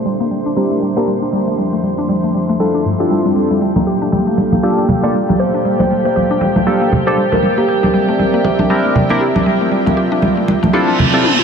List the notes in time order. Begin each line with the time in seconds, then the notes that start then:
Already playing: A#3 D4 C5 E5 C6
0.06 G3
0.20 A#3
0.31 G3
0.46 D4
0.56 G3 C4 D4 E4 G4 A#4
0.71 A3
0.82 G3
0.96 A#3 C4 D4 E4 G4 A#4
1.07 G3
1.22 D4
1.33 F3 G3
1.47 A3
1.58 G3
1.73 A3
1.83 G3
1.98 D4
2.09 G3
2.24 A3
2.34 G3
2.49 A3
2.60 G3 C4 D4 E4 F4 A4
2.75 D4
2.85 G2
3.00 C4 D4 E4 F4 G4 A4
3.11 G3
3.25 G3
3.36 G3
3.51 G3
3.61 G3 A#3 G4 A4 F5 G5
3.76 A#3, high conga
3.87 G4
4.02 D4
4.12 G3, high conga
4.27 A3
4.38 G3, muted conga
4.52 A#3, high conga
4.63 A#3 D4 F4 G4 A4
4.78 D4
4.88 G3, high conga, low conga
5.03 A3 A#3 D4 F4 G4 A4 D5, muted conga
5.14 G3
5.29 A#3, high conga
5.39 G4 C5
5.54 D4
5.65 G3
5.80 A3 C5, high conga
5.90 G3
6.05 A#3 C5
6.16 G4 C5, high conga
6.31 D4
6.41 G3, muted conga
6.56 A3, high conga
6.66 G3 A#3 D4 F4 G4 A4
6.81 A#3
6.92 G4, high conga, low conga
7.07 A#3 D4 F4 G4 A4 C5
7.17 G3
7.32 A3 A#4, muted conga, high conga
7.43 G3, muted conga
7.58 A#3 G4
7.68 C4 G4 A#4 D5 E5
7.83 D4, high conga
7.94 G3
8.09 A3
8.19 G3, high conga
8.34 A#3
8.45 G4, muted conga
8.59 D4, high conga
8.70 G3 C4 D4 E4 G4 A#4
8.85 A3
8.95 G3, high conga, low conga
9.10 A#3 C4 D4 E4 G4 A#4, muted conga
9.21 G4
9.36 D4, high conga
9.46 G3 F4
9.61 A3
9.72 G3
9.87 A3, high conga
9.97 G4
10.12 D4
10.22 G3, high conga
10.37 A3
10.48 G3, muted conga
10.63 A3, high conga
10.73 C4 D4 E4 F4 G4 A4, reverse cymbal
10.88 D4
10.99 D3, high conga, low conga
11.13 C4 D4 E4 F4 G4 A4
11.24 high tom
11.39 high tom